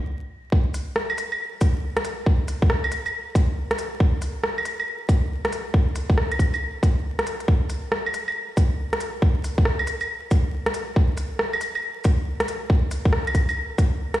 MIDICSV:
0, 0, Header, 1, 2, 480
1, 0, Start_track
1, 0, Tempo, 434783
1, 578, Time_signature, 4, 2, 24, 8
1, 15677, End_track
2, 0, Start_track
2, 0, Title_t, "Drums"
2, 578, Note_on_c, 9, 36, 118
2, 688, Note_off_c, 9, 36, 0
2, 820, Note_on_c, 9, 42, 61
2, 820, Note_on_c, 9, 69, 75
2, 930, Note_off_c, 9, 42, 0
2, 930, Note_off_c, 9, 69, 0
2, 1056, Note_on_c, 9, 37, 107
2, 1167, Note_off_c, 9, 37, 0
2, 1211, Note_on_c, 9, 75, 67
2, 1302, Note_on_c, 9, 42, 54
2, 1302, Note_on_c, 9, 69, 69
2, 1321, Note_off_c, 9, 75, 0
2, 1412, Note_off_c, 9, 42, 0
2, 1412, Note_off_c, 9, 69, 0
2, 1457, Note_on_c, 9, 75, 53
2, 1567, Note_off_c, 9, 75, 0
2, 1777, Note_on_c, 9, 42, 56
2, 1777, Note_on_c, 9, 69, 73
2, 1779, Note_on_c, 9, 36, 99
2, 1888, Note_off_c, 9, 42, 0
2, 1888, Note_off_c, 9, 69, 0
2, 1890, Note_off_c, 9, 36, 0
2, 2171, Note_on_c, 9, 37, 110
2, 2171, Note_on_c, 9, 42, 34
2, 2260, Note_off_c, 9, 42, 0
2, 2260, Note_on_c, 9, 42, 58
2, 2260, Note_on_c, 9, 69, 74
2, 2281, Note_off_c, 9, 37, 0
2, 2370, Note_off_c, 9, 42, 0
2, 2370, Note_off_c, 9, 69, 0
2, 2500, Note_on_c, 9, 36, 121
2, 2611, Note_off_c, 9, 36, 0
2, 2740, Note_on_c, 9, 42, 61
2, 2740, Note_on_c, 9, 69, 72
2, 2850, Note_off_c, 9, 42, 0
2, 2850, Note_off_c, 9, 69, 0
2, 2895, Note_on_c, 9, 36, 112
2, 2977, Note_on_c, 9, 37, 108
2, 3005, Note_off_c, 9, 36, 0
2, 3088, Note_off_c, 9, 37, 0
2, 3136, Note_on_c, 9, 75, 66
2, 3219, Note_on_c, 9, 42, 53
2, 3219, Note_on_c, 9, 69, 65
2, 3246, Note_off_c, 9, 75, 0
2, 3329, Note_off_c, 9, 42, 0
2, 3329, Note_off_c, 9, 69, 0
2, 3376, Note_on_c, 9, 69, 39
2, 3376, Note_on_c, 9, 75, 51
2, 3487, Note_off_c, 9, 69, 0
2, 3487, Note_off_c, 9, 75, 0
2, 3700, Note_on_c, 9, 36, 109
2, 3704, Note_on_c, 9, 42, 59
2, 3704, Note_on_c, 9, 69, 66
2, 3810, Note_off_c, 9, 36, 0
2, 3815, Note_off_c, 9, 42, 0
2, 3815, Note_off_c, 9, 69, 0
2, 4095, Note_on_c, 9, 37, 116
2, 4095, Note_on_c, 9, 42, 34
2, 4180, Note_off_c, 9, 42, 0
2, 4180, Note_on_c, 9, 42, 60
2, 4180, Note_on_c, 9, 69, 70
2, 4205, Note_off_c, 9, 37, 0
2, 4290, Note_off_c, 9, 42, 0
2, 4290, Note_off_c, 9, 69, 0
2, 4419, Note_on_c, 9, 36, 121
2, 4530, Note_off_c, 9, 36, 0
2, 4657, Note_on_c, 9, 42, 60
2, 4657, Note_on_c, 9, 69, 75
2, 4768, Note_off_c, 9, 42, 0
2, 4768, Note_off_c, 9, 69, 0
2, 4896, Note_on_c, 9, 37, 109
2, 5006, Note_off_c, 9, 37, 0
2, 5056, Note_on_c, 9, 75, 63
2, 5137, Note_on_c, 9, 42, 53
2, 5137, Note_on_c, 9, 69, 66
2, 5166, Note_off_c, 9, 75, 0
2, 5247, Note_off_c, 9, 42, 0
2, 5247, Note_off_c, 9, 69, 0
2, 5294, Note_on_c, 9, 75, 51
2, 5404, Note_off_c, 9, 75, 0
2, 5616, Note_on_c, 9, 36, 109
2, 5620, Note_on_c, 9, 42, 55
2, 5620, Note_on_c, 9, 69, 66
2, 5727, Note_off_c, 9, 36, 0
2, 5731, Note_off_c, 9, 42, 0
2, 5731, Note_off_c, 9, 69, 0
2, 6015, Note_on_c, 9, 37, 115
2, 6015, Note_on_c, 9, 42, 34
2, 6100, Note_off_c, 9, 42, 0
2, 6100, Note_on_c, 9, 42, 58
2, 6100, Note_on_c, 9, 69, 70
2, 6125, Note_off_c, 9, 37, 0
2, 6211, Note_off_c, 9, 42, 0
2, 6211, Note_off_c, 9, 69, 0
2, 6337, Note_on_c, 9, 36, 117
2, 6447, Note_off_c, 9, 36, 0
2, 6576, Note_on_c, 9, 42, 57
2, 6576, Note_on_c, 9, 69, 74
2, 6686, Note_off_c, 9, 42, 0
2, 6686, Note_off_c, 9, 69, 0
2, 6730, Note_on_c, 9, 36, 109
2, 6817, Note_on_c, 9, 37, 109
2, 6840, Note_off_c, 9, 36, 0
2, 6928, Note_off_c, 9, 37, 0
2, 6972, Note_on_c, 9, 42, 30
2, 6972, Note_on_c, 9, 75, 61
2, 7057, Note_on_c, 9, 36, 63
2, 7062, Note_off_c, 9, 42, 0
2, 7062, Note_on_c, 9, 42, 50
2, 7062, Note_on_c, 9, 69, 67
2, 7082, Note_off_c, 9, 75, 0
2, 7168, Note_off_c, 9, 36, 0
2, 7172, Note_off_c, 9, 42, 0
2, 7172, Note_off_c, 9, 69, 0
2, 7218, Note_on_c, 9, 69, 40
2, 7218, Note_on_c, 9, 75, 51
2, 7328, Note_off_c, 9, 69, 0
2, 7328, Note_off_c, 9, 75, 0
2, 7537, Note_on_c, 9, 36, 110
2, 7544, Note_on_c, 9, 42, 54
2, 7544, Note_on_c, 9, 69, 70
2, 7648, Note_off_c, 9, 36, 0
2, 7654, Note_off_c, 9, 42, 0
2, 7654, Note_off_c, 9, 69, 0
2, 7937, Note_on_c, 9, 37, 117
2, 7937, Note_on_c, 9, 42, 32
2, 8023, Note_off_c, 9, 42, 0
2, 8023, Note_on_c, 9, 42, 56
2, 8023, Note_on_c, 9, 69, 70
2, 8048, Note_off_c, 9, 37, 0
2, 8134, Note_off_c, 9, 42, 0
2, 8134, Note_off_c, 9, 69, 0
2, 8174, Note_on_c, 9, 42, 30
2, 8260, Note_on_c, 9, 36, 113
2, 8285, Note_off_c, 9, 42, 0
2, 8371, Note_off_c, 9, 36, 0
2, 8498, Note_on_c, 9, 42, 56
2, 8498, Note_on_c, 9, 69, 79
2, 8608, Note_off_c, 9, 42, 0
2, 8608, Note_off_c, 9, 69, 0
2, 8740, Note_on_c, 9, 37, 107
2, 8851, Note_off_c, 9, 37, 0
2, 8902, Note_on_c, 9, 75, 61
2, 8986, Note_on_c, 9, 42, 53
2, 8986, Note_on_c, 9, 69, 72
2, 9012, Note_off_c, 9, 75, 0
2, 9097, Note_off_c, 9, 42, 0
2, 9097, Note_off_c, 9, 69, 0
2, 9140, Note_on_c, 9, 75, 51
2, 9250, Note_off_c, 9, 75, 0
2, 9461, Note_on_c, 9, 36, 102
2, 9464, Note_on_c, 9, 42, 51
2, 9464, Note_on_c, 9, 69, 71
2, 9571, Note_off_c, 9, 36, 0
2, 9574, Note_off_c, 9, 42, 0
2, 9574, Note_off_c, 9, 69, 0
2, 9857, Note_on_c, 9, 37, 108
2, 9857, Note_on_c, 9, 42, 32
2, 9941, Note_off_c, 9, 42, 0
2, 9941, Note_on_c, 9, 42, 55
2, 9941, Note_on_c, 9, 69, 77
2, 9968, Note_off_c, 9, 37, 0
2, 10052, Note_off_c, 9, 42, 0
2, 10052, Note_off_c, 9, 69, 0
2, 10181, Note_on_c, 9, 36, 114
2, 10291, Note_off_c, 9, 36, 0
2, 10426, Note_on_c, 9, 42, 54
2, 10426, Note_on_c, 9, 69, 79
2, 10536, Note_off_c, 9, 42, 0
2, 10536, Note_off_c, 9, 69, 0
2, 10576, Note_on_c, 9, 36, 102
2, 10657, Note_on_c, 9, 37, 102
2, 10687, Note_off_c, 9, 36, 0
2, 10768, Note_off_c, 9, 37, 0
2, 10811, Note_on_c, 9, 75, 65
2, 10898, Note_on_c, 9, 42, 51
2, 10898, Note_on_c, 9, 69, 76
2, 10922, Note_off_c, 9, 75, 0
2, 11009, Note_off_c, 9, 42, 0
2, 11009, Note_off_c, 9, 69, 0
2, 11049, Note_on_c, 9, 69, 43
2, 11049, Note_on_c, 9, 75, 50
2, 11159, Note_off_c, 9, 69, 0
2, 11159, Note_off_c, 9, 75, 0
2, 11382, Note_on_c, 9, 42, 53
2, 11382, Note_on_c, 9, 69, 73
2, 11383, Note_on_c, 9, 36, 101
2, 11493, Note_off_c, 9, 36, 0
2, 11493, Note_off_c, 9, 42, 0
2, 11493, Note_off_c, 9, 69, 0
2, 11772, Note_on_c, 9, 37, 110
2, 11772, Note_on_c, 9, 42, 31
2, 11858, Note_off_c, 9, 42, 0
2, 11858, Note_on_c, 9, 42, 55
2, 11858, Note_on_c, 9, 69, 79
2, 11882, Note_off_c, 9, 37, 0
2, 11969, Note_off_c, 9, 42, 0
2, 11969, Note_off_c, 9, 69, 0
2, 12103, Note_on_c, 9, 36, 114
2, 12214, Note_off_c, 9, 36, 0
2, 12338, Note_on_c, 9, 42, 58
2, 12338, Note_on_c, 9, 69, 82
2, 12448, Note_off_c, 9, 42, 0
2, 12448, Note_off_c, 9, 69, 0
2, 12577, Note_on_c, 9, 37, 103
2, 12687, Note_off_c, 9, 37, 0
2, 12734, Note_on_c, 9, 75, 66
2, 12817, Note_on_c, 9, 42, 53
2, 12817, Note_on_c, 9, 69, 74
2, 12844, Note_off_c, 9, 75, 0
2, 12927, Note_off_c, 9, 42, 0
2, 12927, Note_off_c, 9, 69, 0
2, 12975, Note_on_c, 9, 75, 52
2, 13085, Note_off_c, 9, 75, 0
2, 13295, Note_on_c, 9, 42, 53
2, 13295, Note_on_c, 9, 69, 79
2, 13302, Note_on_c, 9, 36, 101
2, 13405, Note_off_c, 9, 42, 0
2, 13405, Note_off_c, 9, 69, 0
2, 13412, Note_off_c, 9, 36, 0
2, 13690, Note_on_c, 9, 37, 113
2, 13690, Note_on_c, 9, 42, 33
2, 13780, Note_off_c, 9, 42, 0
2, 13780, Note_on_c, 9, 42, 55
2, 13780, Note_on_c, 9, 69, 77
2, 13801, Note_off_c, 9, 37, 0
2, 13890, Note_off_c, 9, 42, 0
2, 13890, Note_off_c, 9, 69, 0
2, 14019, Note_on_c, 9, 36, 111
2, 14129, Note_off_c, 9, 36, 0
2, 14257, Note_on_c, 9, 42, 62
2, 14257, Note_on_c, 9, 69, 82
2, 14367, Note_off_c, 9, 42, 0
2, 14367, Note_off_c, 9, 69, 0
2, 14412, Note_on_c, 9, 36, 104
2, 14492, Note_on_c, 9, 37, 108
2, 14523, Note_off_c, 9, 36, 0
2, 14602, Note_off_c, 9, 37, 0
2, 14653, Note_on_c, 9, 42, 31
2, 14653, Note_on_c, 9, 75, 65
2, 14735, Note_off_c, 9, 42, 0
2, 14735, Note_on_c, 9, 36, 59
2, 14735, Note_on_c, 9, 42, 56
2, 14735, Note_on_c, 9, 69, 72
2, 14764, Note_off_c, 9, 75, 0
2, 14845, Note_off_c, 9, 36, 0
2, 14845, Note_off_c, 9, 42, 0
2, 14845, Note_off_c, 9, 69, 0
2, 14891, Note_on_c, 9, 69, 44
2, 14891, Note_on_c, 9, 75, 56
2, 15002, Note_off_c, 9, 69, 0
2, 15002, Note_off_c, 9, 75, 0
2, 15215, Note_on_c, 9, 36, 100
2, 15219, Note_on_c, 9, 42, 58
2, 15219, Note_on_c, 9, 69, 77
2, 15326, Note_off_c, 9, 36, 0
2, 15329, Note_off_c, 9, 42, 0
2, 15329, Note_off_c, 9, 69, 0
2, 15612, Note_on_c, 9, 37, 108
2, 15612, Note_on_c, 9, 42, 34
2, 15677, Note_off_c, 9, 37, 0
2, 15677, Note_off_c, 9, 42, 0
2, 15677, End_track
0, 0, End_of_file